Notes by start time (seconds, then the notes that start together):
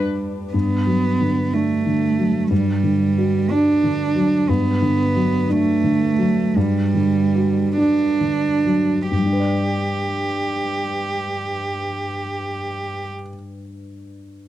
Already playing: G2 G3 D4 B4
0.53 G2 B3
0.87 F#3
1.20 D3
1.53 A3 D4
1.86 D3
2.19 F#3
2.51 G2 G3
2.83 D3
3.18 F#4
3.50 D4
3.84 D3
4.16 F#3
4.49 G2 B3
4.82 D3
5.16 F#3
5.50 A3 D4
5.84 D3
6.19 F#3
6.56 G2 G3
6.95 D3
7.35 F#4
7.77 D4
8.21 D3
8.65 F#3
9.12 G2 G4
9.19 G3
9.26 D4
9.33 B4
9.39 D5